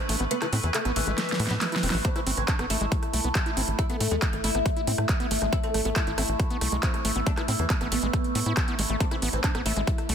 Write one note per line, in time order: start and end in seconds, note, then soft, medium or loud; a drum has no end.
0.00 2.04 A3 medium
0.00 0.48 C4 medium
0.00 0.22 D4 medium
0.00 2.07 B4 medium
0.09 0.16 A1 loud
0.09 0.16 A3 medium
0.09 open hi-hat loud
0.20 0.27 A1 medium
0.20 0.25 B3 medium
0.20 closed hi-hat soft
0.31 0.35 A3 medium
0.31 0.35 B3 loud
0.31 closed hi-hat medium
0.42 0.46 E3 medium
0.42 0.46 E4 loud
0.42 cross-stick medium
0.42 clap soft
0.42 closed hi-hat soft
0.53 0.60 A2 medium
0.53 0.57 C4 loud
0.53 open hi-hat loud
0.63 0.71 E2 medium
0.63 0.68 E3 medium
0.63 closed hi-hat soft
0.74 0.79 A3 medium
0.74 clap loud
0.74 closed hi-hat loud
0.85 0.92 A1 medium
0.85 0.90 E3 medium
0.85 0.92 B3 loud
0.85 cross-stick soft
0.85 closed hi-hat soft
0.96 1.03 A1 medium
0.96 1.96 E3 loud
0.96 1.01 A3 medium
0.96 open hi-hat loud
1.07 1.14 A1 medium
1.07 1.12 G#3 loud
1.18 1.21 A3 loud
1.18 snare medium
1.18 closed hi-hat loud
1.29 snare medium
1.29 closed hi-hat soft
1.40 1.47 A2 loud
1.40 1.46 A3 medium
1.40 open hi-hat loud
1.47 1.58 A2 medium
1.47 1.55 B3 medium
1.47 snare medium
1.47 closed hi-hat soft
1.61 1.66 A3 medium
1.61 snare medium
1.61 clap loud
1.61 closed hi-hat loud
1.72 1.77 E4 loud
1.72 snare loud
1.72 closed hi-hat soft
1.83 1.90 E1 loud
1.83 1.88 C4 loud
1.83 open hi-hat loud
1.90 2.01 A1 medium
1.90 snare loud
1.90 open hi-hat medium
2.05 2.09 A3 medium
2.05 10.15 A3 medium
2.05 2.12 C4 medium
2.05 2.09 D4 loud
2.05 10.15 E4 medium
2.05 kick loud
2.05 closed hi-hat loud
2.16 2.20 E3 medium
2.16 2.23 C4 medium
2.16 2.20 E4 loud
2.16 cross-stick soft
2.16 closed hi-hat soft
2.27 2.34 A1 medium
2.27 2.31 C4 loud
2.27 open hi-hat loud
2.37 2.45 A1 medium
2.37 2.42 E3 medium
2.37 2.44 C4 medium
2.37 closed hi-hat soft
2.48 2.55 C4 medium
2.48 2.53 D4 medium
2.48 kick loud
2.48 clap loud
2.48 closed hi-hat loud
2.59 2.66 A1 medium
2.59 2.64 E3 medium
2.59 2.66 B3 loud
2.59 cross-stick medium
2.59 closed hi-hat soft
2.70 2.77 A1 medium
2.70 2.77 A3 medium
2.70 3.70 E4 loud
2.70 open hi-hat loud
2.81 2.88 A1 medium
2.81 2.85 G#3 loud
2.81 closed hi-hat soft
2.92 2.94 A3 loud
2.92 kick loud
2.92 closed hi-hat loud
3.03 cross-stick soft
3.03 closed hi-hat soft
3.13 3.21 C2 loud
3.13 3.20 A3 medium
3.13 open hi-hat loud
3.24 3.32 C2 medium
3.24 3.29 B3 medium
3.24 closed hi-hat soft
3.35 3.40 A3 medium
3.35 kick loud
3.35 cross-stick soft
3.35 clap loud
3.35 closed hi-hat loud
3.46 3.51 E4 loud
3.46 closed hi-hat soft
3.57 3.64 A1 loud
3.57 3.62 C4 loud
3.57 open hi-hat loud
3.68 3.75 A1 medium
3.68 closed hi-hat soft
3.79 3.83 E4 loud
3.79 kick loud
3.79 cross-stick medium
3.79 closed hi-hat loud
3.90 3.94 A3 medium
3.90 3.96 B3 loud
3.90 closed hi-hat soft
4.00 4.08 A2 medium
4.00 4.07 A3 medium
4.00 open hi-hat loud
4.11 4.19 E2 medium
4.11 4.16 G#3 loud
4.11 4.16 A3 medium
4.11 closed hi-hat soft
4.22 4.25 A3 loud
4.22 4.27 E4 medium
4.22 kick loud
4.22 cross-stick soft
4.22 clap loud
4.22 closed hi-hat loud
4.33 4.40 A1 medium
4.33 4.38 A3 medium
4.33 closed hi-hat soft
4.44 4.51 A1 loud
4.44 4.51 A3 medium
4.44 5.44 E4 medium
4.44 open hi-hat loud
4.55 4.62 A1 medium
4.55 4.59 B3 medium
4.55 cross-stick soft
4.55 closed hi-hat soft
4.66 4.70 A3 medium
4.66 kick loud
4.66 closed hi-hat loud
4.77 4.81 E4 loud
4.77 closed hi-hat soft
4.87 4.95 A2 medium
4.87 4.92 C4 loud
4.87 open hi-hat loud
4.98 5.06 A2 medium
4.98 cross-stick medium
4.98 closed hi-hat soft
5.09 kick loud
5.09 clap loud
5.09 closed hi-hat medium
5.20 5.27 B3 loud
5.20 closed hi-hat soft
5.31 5.38 A1 medium
5.31 5.38 A3 medium
5.31 open hi-hat loud
5.42 5.49 A1 medium
5.42 5.46 G#3 loud
5.42 cross-stick soft
5.42 closed hi-hat soft
5.53 5.55 A3 loud
5.53 5.60 C4 medium
5.53 5.57 E4 loud
5.53 kick loud
5.53 closed hi-hat medium
5.63 5.68 A3 medium
5.63 5.70 C4 medium
5.63 closed hi-hat soft
5.74 5.82 A1 medium
5.74 5.81 A3 medium
5.74 cross-stick soft
5.74 open hi-hat loud
5.85 5.92 A1 medium
5.85 5.90 A3 medium
5.85 5.90 B3 medium
5.85 closed hi-hat soft
5.96 6.01 A3 medium
5.96 6.01 E4 medium
5.96 kick loud
5.96 clap loud
5.96 closed hi-hat medium
6.07 6.14 A1 medium
6.07 6.12 A3 medium
6.07 6.12 E4 loud
6.07 closed hi-hat soft
6.18 6.25 A1 medium
6.18 6.22 C4 loud
6.18 7.18 E4 loud
6.18 cross-stick medium
6.18 open hi-hat loud
6.29 6.36 A1 medium
6.29 closed hi-hat soft
6.40 kick loud
6.40 closed hi-hat medium
6.50 6.57 B3 loud
6.50 closed hi-hat soft
6.61 6.69 C2 loud
6.61 6.68 A3 medium
6.61 cross-stick soft
6.61 open hi-hat loud
6.72 6.79 C2 medium
6.72 6.77 G#3 loud
6.72 closed hi-hat soft
6.83 6.86 A3 loud
6.83 7.44 C4 medium
6.83 kick loud
6.83 clap loud
6.83 closed hi-hat medium
6.94 cross-stick soft
6.94 closed hi-hat soft
7.05 7.12 A1 loud
7.05 7.12 A3 medium
7.05 open hi-hat loud
7.16 7.23 A1 medium
7.16 7.20 B3 medium
7.16 closed hi-hat soft
7.26 7.31 A3 medium
7.26 7.31 D4 loud
7.26 kick loud
7.26 closed hi-hat medium
7.37 7.42 E3 medium
7.37 7.42 E4 loud
7.37 cross-stick medium
7.37 clap soft
7.37 closed hi-hat soft
7.48 7.56 A2 medium
7.48 7.53 C4 loud
7.48 open hi-hat loud
7.59 7.66 E2 medium
7.59 7.64 E3 medium
7.59 closed hi-hat soft
7.70 7.75 D4 medium
7.70 kick loud
7.70 clap loud
7.70 closed hi-hat medium
7.81 7.88 A1 medium
7.81 7.86 E3 medium
7.81 7.88 B3 loud
7.81 cross-stick soft
7.81 closed hi-hat soft
7.92 7.99 A1 medium
7.92 7.99 A3 medium
7.92 8.92 B3 loud
7.92 open hi-hat loud
8.03 8.10 A1 medium
8.03 8.07 G#3 loud
8.03 closed hi-hat soft
8.13 8.16 A3 loud
8.13 kick loud
8.13 cross-stick soft
8.13 closed hi-hat medium
8.24 closed hi-hat soft
8.35 8.42 A2 loud
8.35 8.40 A3 medium
8.35 open hi-hat loud
8.46 8.53 A2 medium
8.46 8.53 E4 loud
8.46 closed hi-hat soft
8.57 kick loud
8.57 cross-stick medium
8.57 clap loud
8.57 closed hi-hat medium
8.68 8.75 B3 loud
8.68 closed hi-hat soft
8.79 8.86 A1 loud
8.79 8.81 G#3 loud
8.79 open hi-hat loud
8.90 8.97 A1 medium
8.90 8.96 A3 medium
8.90 closed hi-hat soft
9.00 9.05 A3 medium
9.00 9.07 C4 medium
9.00 9.05 D4 loud
9.00 kick loud
9.00 closed hi-hat medium
9.11 9.16 E3 medium
9.11 9.18 C4 medium
9.11 9.16 E4 loud
9.11 cross-stick soft
9.11 closed hi-hat soft
9.22 9.29 A1 loud
9.22 9.29 B3 loud
9.22 open hi-hat loud
9.33 9.40 A1 medium
9.33 9.38 E3 medium
9.33 9.40 C4 medium
9.33 closed hi-hat soft
9.44 9.49 D4 medium
9.44 kick loud
9.44 clap loud
9.44 closed hi-hat medium
9.55 9.62 A1 medium
9.55 9.59 E3 medium
9.55 9.62 B3 loud
9.55 cross-stick medium
9.55 closed hi-hat soft
9.66 9.73 A1 medium
9.66 9.73 A3 medium
9.66 10.15 E4 loud
9.66 open hi-hat loud
9.77 9.84 A1 medium
9.77 9.81 G#3 loud
9.77 closed hi-hat soft
9.87 9.90 A3 loud
9.87 kick loud
9.87 closed hi-hat medium
9.98 cross-stick soft
9.98 closed hi-hat soft
10.09 10.15 C2 loud
10.09 10.15 A3 medium
10.09 open hi-hat loud